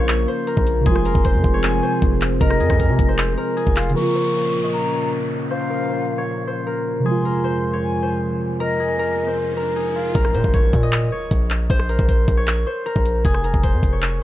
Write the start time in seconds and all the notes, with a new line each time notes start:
Already playing: A#1 C#3 F3 A#3 C#4 F4 A#4 D#5
0.00 C#5
0.09 clap, closed hi-hat
0.28 C5
0.47 A#4, closed hi-hat
0.57 A#1, kick
0.67 closed hi-hat
0.80 C3 F3
0.86 F1 F3 G#3 C4 G#4 C6, kick, closed hi-hat
0.92 F4
0.96 cross-stick
1.05 A#4, closed hi-hat
1.15 F1, kick
1.25 C5, kick, closed hi-hat
1.34 F2
1.44 F1, kick, closed hi-hat
1.54 C#5
1.63 G#5, clap, closed hi-hat
1.83 C5
2.02 F1, kick, closed hi-hat
2.21 clap, closed hi-hat
2.41 F1 A#4 D#5, kick, closed hi-hat
2.50 cross-stick
2.60 F2 G#4, closed hi-hat
2.70 F2, kick, cross-stick
2.80 A#4, kick, closed hi-hat
2.89 C3
2.99 F1, kick, closed hi-hat
3.08 C5
3.18 clap, closed hi-hat
3.38 A#4
3.57 G#4, closed hi-hat
3.67 F1, kick
3.76 F4 F5, clap, closed hi-hat, open hi-hat
3.83 closed hi-hat
3.89 C#3, closed hi-hat
3.94 A#2 F3 A#3 C#4 A#4 C#6, downlifter
4.01 F4
4.15 C5
4.35 C#5
4.63 D#5
4.73 A#5
4.93 C#5
5.50 C5 F5
5.70 A#4
5.89 C5
6.18 C#5
6.47 C5
6.67 A#4
7.00 C3 F3
7.05 F2 C3 G#3 G#4 C6, riser
7.11 F4
7.25 A#4
7.44 C5
7.73 C#5
7.83 G#5
8.02 C5
8.60 A#4 D#5
8.80 G#4
8.99 A#4
9.28 C5
9.57 A#4
9.76 G#4
9.96 F4 F5
10.15 A#1 A#4, kick, closed hi-hat, impact
10.25 cross-stick
10.34 A#2 C5, closed hi-hat
10.44 A#1, kick
10.54 C#5, kick, closed hi-hat
10.73 A#2, kick, closed hi-hat
10.83 D#5
10.92 clap, closed hi-hat
11.12 C#5
11.31 A#1, kick, closed hi-hat
11.50 clap, closed hi-hat
11.70 A#1 C5, kick, closed hi-hat
11.79 cross-stick
11.89 A#4, closed hi-hat
11.99 A#1, kick
12.08 C5, kick, closed hi-hat
12.28 A#1, kick, closed hi-hat
12.37 C#5
12.47 clap, closed hi-hat
12.67 C5
12.86 A#4, closed hi-hat
12.96 A#1, kick
13.05 closed hi-hat
13.25 F1 G#4, kick, closed hi-hat
13.34 cross-stick
13.44 A#4, closed hi-hat
13.54 F1, kick
13.63 C5, kick, closed hi-hat
13.73 F2
13.83 F1, kick, closed hi-hat
13.93 C#5
14.02 clap, closed hi-hat